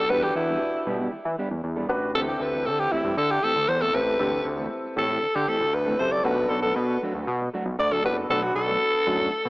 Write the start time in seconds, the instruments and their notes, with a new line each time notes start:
Already playing: analog synth bass B1, alto saxophone A4
0.09 analog synth bass E2, clean electric guitar G3 B3 D4 G4, grand piano D4 F#4 G4 B4, alto saxophone B4
0.23 alto saxophone G4, muted clean electric guitar stroke
0.35 analog synth bass E2, alto saxophone E4, muted clean electric guitar stroke
0.48 clean electric guitar G3 B3 D4 A4
0.61 muted clean electric guitar stroke
0.74 muted clean electric guitar stroke
0.87 analog synth bass B2, clean electric guitar G3 B3 D4 G4
1.00 clean electric guitar G3 B3 D4 G4
1.13 analog synth bass E3, muted clean electric guitar stroke
1.25 analog synth bass E3, muted clean electric guitar stroke
1.38 clean electric guitar G3 B3 D4 G4
1.51 analog synth bass E2, muted clean electric guitar stroke
1.64 analog synth bass E2, muted clean electric guitar stroke
1.76 clean electric guitar G3 B3 D4 A4
1.89 analog synth bass A1, grand piano D4 F#4 G4 B4
2.02 muted clean electric guitar stroke
2.14 analog synth bass D2, clean electric guitar E3 A3 C4 G4, grand piano C4 E4 G4 A4, alto saxophone A4
2.28 alto saxophone G4, muted clean electric guitar stroke
2.40 analog synth bass D2, alto saxophone B4, muted clean electric guitar stroke
2.53 clean electric guitar E3 A3 C4 A4
2.66 analog synth bass D3, alto saxophone A4, muted clean electric guitar stroke
2.79 alto saxophone G4, muted clean electric guitar stroke
2.92 clean electric guitar E3 A3 C4 G4, alto saxophone E4
3.04 analog synth bass G2, clean electric guitar E3 A3 C4 G4
3.17 analog synth bass D3, alto saxophone A4, muted clean electric guitar stroke
3.30 alto saxophone G4, muted clean electric guitar stroke
3.43 clean electric guitar E3 A3 C4 G4, alto saxophone A4
3.56 analog synth bass D2, muted clean electric guitar stroke
3.68 analog synth bass E2, alto saxophone C5, muted clean electric guitar stroke
3.81 clean electric guitar E3 A3 C4 A4, alto saxophone A4
3.94 analog synth bass A1, grand piano C4 E4 G4 A4, alto saxophone B4, muted clean electric guitar stroke
4.07 muted clean electric guitar stroke
4.19 analog synth bass D2, clean electric guitar E3 A3 C4 G4, grand piano C4 E4 G4 A4
4.33 muted clean electric guitar stroke
4.45 analog synth bass D2, muted clean electric guitar stroke
4.58 clean electric guitar E3 A3 C4 A4
4.71 muted clean electric guitar stroke
4.84 muted clean electric guitar stroke
4.96 analog synth bass A2, clean electric guitar E3 A3 C4 G4, alto saxophone A4
5.09 clean electric guitar E3 A3 C4 G4
5.22 analog synth bass D3, muted clean electric guitar stroke
5.35 analog synth bass D3, alto saxophone G4, muted clean electric guitar stroke
5.47 clean electric guitar E3 A3 C4 G4, alto saxophone A4
5.60 analog synth bass D2, muted clean electric guitar stroke
5.73 analog synth bass D2, alto saxophone B4, muted clean electric guitar stroke
5.86 clean electric guitar E3 A3 C4 A4
5.99 analog synth bass F#1, grand piano C4 E4 G4 A4, alto saxophone C5, muted clean electric guitar stroke
6.11 alto saxophone D5, muted clean electric guitar stroke
6.24 analog synth bass B1, clean electric guitar F#3 A3 D4 F#4, grand piano B3 C#4 F#4 A4, alto saxophone B4
6.31 grand piano D4
6.38 muted clean electric guitar stroke
6.49 analog synth bass B1, alto saxophone A4, muted clean electric guitar stroke
6.63 clean electric guitar F#3 A3 D4 A4, alto saxophone A4
6.75 analog synth bass B2, alto saxophone B4, muted clean electric guitar stroke
6.89 muted clean electric guitar stroke
7.02 clean electric guitar F#3 A3 D4 F#4
7.15 analog synth bass D2, clean electric guitar F#3 A3 D4 F#4
7.27 analog synth bass B2, muted clean electric guitar stroke
7.41 muted clean electric guitar stroke
7.54 clean electric guitar F#3 A3 D4 F#4
7.65 analog synth bass B1, muted clean electric guitar stroke
7.79 analog synth bass D2, alto saxophone D5, muted clean electric guitar stroke
7.91 clean electric guitar F#3 A3 D4 A4, alto saxophone A4
8.04 analog synth bass F#1, grand piano B3 D4 F#4 A4, alto saxophone B4
8.17 muted clean electric guitar stroke
8.30 analog synth bass B1, clean electric guitar F#3 A3 D4 F#4, grand piano B3 D4 F#4 B4, alto saxophone A4
8.43 alto saxophone F#4, muted clean electric guitar stroke
8.55 analog synth bass B1, alto saxophone A4, muted clean electric guitar stroke
8.68 clean electric guitar F#3 A3 D4 A4
8.81 muted clean electric guitar stroke
8.94 muted clean electric guitar stroke
9.06 analog synth bass F#2, clean electric guitar F#3 A3 D4 F#4
9.20 clean electric guitar F#3 A3 D4 F#4
9.33 muted clean electric guitar stroke
9.45 analog synth bass B2, muted clean electric guitar stroke